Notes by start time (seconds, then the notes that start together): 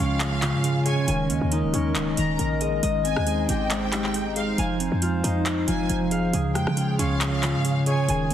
Already playing: C#3 G#3 C#4 D#4 F4 G#4 F5
0.00 C#2 C#4 F5
0.20 C#3, clap, closed hi-hat
0.41 C#3 F4, clap, closed hi-hat
0.54 G#2
0.64 C#3, closed hi-hat
0.86 G#4 C#5 G#5, closed hi-hat
1.08 D#1 D#3 A#4 D#5 G#5, closed hi-hat
1.30 D#2 A#3, closed hi-hat
1.41 D#2
1.52 D#3 D#4, closed hi-hat
1.63 C#1
1.74 D#2 C#4, closed hi-hat
1.95 C#1 D#3, clap, closed hi-hat
2.17 D#1 D#3 D#4 A#5, closed hi-hat
2.39 A#1 D#3, closed hi-hat
2.61 G#4 D#5, closed hi-hat
2.83 G#1 G#3 D#4 C5 D#5, closed hi-hat
3.05 C4 G#5, closed hi-hat
3.16 D#2, cross-stick
3.27 G#3 G#4, closed hi-hat
3.49 G#1 G4 G5, closed hi-hat
3.70 G#3, clap, closed hi-hat
3.93 G#3 G4, clap, closed hi-hat
4.04 clap
4.14 G#3, closed hi-hat
4.36 G#4 C5 F5, closed hi-hat
4.58 F1 F3 C5 F5 G#5, closed hi-hat
4.80 C4, closed hi-hat
4.92 F2
5.02 F3 F4, closed hi-hat
5.23 F2 D#4, closed hi-hat
5.46 F3, clap, closed hi-hat
5.67 F1 F3 F4 G#5, closed hi-hat
5.90 F1 F3, closed hi-hat
6.11 G#4 F5, closed hi-hat
6.33 C#2 C#3 F4 G#4 C#5, closed hi-hat
6.55 F2 G#3 G5, cross-stick, closed hi-hat
6.67 C#3, cross-stick
6.77 C#3 F4, closed hi-hat
6.99 C#2 C#4 F5, closed hi-hat
7.21 C#3, clap, closed hi-hat
7.42 C#3 F4, clap, closed hi-hat
7.54 G#2
7.65 C#3, closed hi-hat
7.86 G#4 C#5 G#5, closed hi-hat
8.09 D#1 D#3 D#4 A#4 G#5, closed hi-hat
8.30 D#2 A#3, closed hi-hat